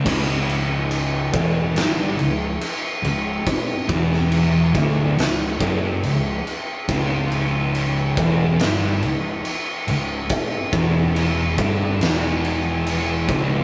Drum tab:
CC |x-x-x-x-x-x-x-x-|x-x-x-x-x-x-x-x-|x-x-x-x-x-x-x-x-|x-x-x-x-x-x-x-x-|
SD |--------o-------|---o----o-------|--------o-------|--------o-------|
BD |o-----o---------|o-o---o---o-----|o-----o---------|o-o---o-------o-|